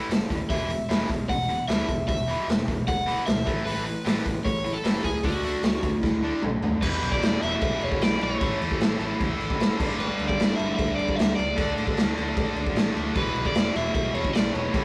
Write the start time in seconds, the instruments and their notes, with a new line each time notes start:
Already playing: distorted electric guitar A3
0.09 picked electric bass F#1, distorted electric guitar A2 E3, snare, open hi-hat
0.30 picked electric bass D#2, distorted electric guitar A2 E3, kick, open hi-hat
0.49 picked electric bass E1, distorted electric guitar E2 B2 E3 G#3 B3, overdriven electric guitar E5, kick, open hi-hat
0.69 distorted electric guitar E2 B2 E3 G#3, open hi-hat
0.89 picked electric bass E1, distorted electric guitar E2 B2 E3 G#3 B3, snare, open hi-hat
1.09 picked electric bass E1, distorted electric guitar E2 B2 E3 G#3, kick, open hi-hat
1.28 picked electric bass E1, distorted electric guitar E2 B2 E3 G#3, overdriven electric guitar F#5, kick, open hi-hat
1.48 distorted electric guitar E2 B2 E3 G#3, open hi-hat
1.68 picked electric bass D2, distorted electric guitar E2 B2 E3 G#3 B3, overdriven electric guitar E5, snare, open hi-hat
1.88 picked electric bass E1, distorted electric guitar E2 B2 E3 G#3, kick, open hi-hat
2.08 picked electric bass E1, distorted electric guitar E2 B2 E3 G#3, overdriven electric guitar E5, kick, open hi-hat
2.26 distorted electric guitar E2 B2 E3 G#3 B3, open hi-hat
2.47 picked electric bass E1, distorted electric guitar E2 B2 E3 G#3, snare, open hi-hat
2.68 picked electric bass E1, distorted electric guitar E2 B2 E3 G#3, kick, open hi-hat
2.87 picked electric bass E1, distorted electric guitar E2 B2 E3 G#3, overdriven electric guitar F#5, kick, open hi-hat
3.06 distorted electric guitar E2 B2 E3 G#3 B3, open hi-hat
3.26 picked electric bass D2, distorted electric guitar E2 B2 E3 G#3, overdriven electric guitar E5, snare, open hi-hat
3.46 picked electric bass A1, distorted electric guitar A2 E3 A3, kick, open hi-hat
3.65 picked electric bass A1, distorted electric guitar A2 E3 A3, overdriven electric guitar B4, open hi-hat
3.86 distorted electric guitar A2 E3, open hi-hat
4.05 picked electric bass A1, distorted electric guitar A2 E3 A3, snare, open hi-hat
4.25 picked electric bass A1, distorted electric guitar A2 E3, kick, open hi-hat
4.45 picked electric bass A1, distorted electric guitar A2 E3, overdriven electric guitar C#5, kick, open hi-hat
4.64 distorted electric guitar A2 E3, open hi-hat
4.74 overdriven electric guitar A4
4.84 picked electric bass F#1, distorted electric guitar A2 E3 A3, snare, open hi-hat
5.04 picked electric bass C#2, distorted electric guitar A2 E3, overdriven electric guitar G#4, kick, open hi-hat
5.23 picked electric bass D2, distorted electric guitar D3 A3 D4, overdriven electric guitar F#4, kick, open hi-hat
5.43 distorted electric guitar D3 A3 D4, open hi-hat
5.63 picked electric bass D2, distorted electric guitar D3 A3, snare, open hi-hat
5.83 picked electric bass D2, distorted electric guitar D3 A3, kick, open hi-hat
6.03 picked electric bass D2, distorted electric guitar D3 A3, overdriven electric guitar E4, kick, snare
6.24 distorted electric guitar D3 A3 D4
6.42 picked electric bass B1, distorted electric guitar D3 A3, mid tom
6.62 picked electric bass D2, distorted electric guitar D3 A3, floor tom
6.81 picked electric bass E1, distorted electric guitar E2 B2 E3 G#3 B3 E4, overdriven electric guitar B4, kick, crash
7.03 picked electric bass B1, crash
7.12 overdriven electric guitar D5, kick
7.22 picked electric bass E1, snare, crash
7.41 picked electric bass E1, distorted electric guitar E3 G#3 B3 E4, overdriven electric guitar E5, crash
7.61 picked electric bass B1, overdriven electric guitar E5, kick, crash
7.81 picked electric bass E1, overdriven electric guitar C#5, crash
7.92 kick
8.01 picked electric bass B1, overdriven electric guitar D5, snare, crash
8.21 picked electric bass B1, overdriven electric guitar C#5, crash
8.41 picked electric bass A1, distorted electric guitar A2 E3 A3 C#4 E4, kick, crash
8.60 picked electric bass E2, crash
8.71 kick
8.80 picked electric bass A1, snare, crash
8.99 picked electric bass A1, distorted electric guitar A2 E3 A3 C#4 E4, crash
9.20 picked electric bass E2, kick, crash
9.40 picked electric bass A1, crash
9.50 kick
9.60 picked electric bass G#1, snare, crash
9.79 picked electric bass G1, distorted electric guitar G2 D3 G3 B3 D4, kick, crash
9.99 picked electric bass G1, overdriven electric guitar B4, crash
10.19 picked electric bass D2, crash
10.28 overdriven electric guitar D5, kick
10.38 picked electric bass G1, distorted electric guitar G2 D3 G3 B3 D4, snare, crash
10.56 picked electric bass G1, overdriven electric guitar E5, crash
10.75 picked electric bass D2, overdriven electric guitar E5, kick, crash
10.96 picked electric bass G1, overdriven electric guitar D5, crash
11.08 kick
11.16 picked electric bass D2, overdriven electric guitar E5, crash
11.20 snare
11.36 picked electric bass C#2, overdriven electric guitar D5, crash
11.57 picked electric bass D2, distorted electric guitar D3 F#3 A3 D4, kick, crash
11.78 picked electric bass A2, crash
11.87 kick
11.97 picked electric bass D2, snare, crash
12.16 picked electric bass D2, distorted electric guitar D3 F#3 A3 D4, crash
12.37 picked electric bass A2, kick, crash
12.56 picked electric bass D2, crash
12.66 kick
12.75 picked electric bass A1, snare, crash
12.95 picked electric bass D2, crash
13.15 picked electric bass E1, distorted electric guitar E2 B2 E3 G#3 B3 E4, overdriven electric guitar B4, kick, crash
13.19 distorted electric guitar E3
13.35 picked electric bass B1, crash
13.45 overdriven electric guitar D5, kick
13.55 picked electric bass E1, snare, crash
13.74 picked electric bass E1, distorted electric guitar E3 G#3 B3 E4, overdriven electric guitar E5, crash
13.94 picked electric bass B1, overdriven electric guitar E5, kick, crash
14.14 picked electric bass E1, overdriven electric guitar C#5, crash
14.25 kick
14.33 picked electric bass B1, overdriven electric guitar D5, snare, crash
14.54 picked electric bass E1, overdriven electric guitar C#5, crash
14.73 picked electric bass A1, distorted electric guitar A2 E3 A3 C#4 E4, kick, crash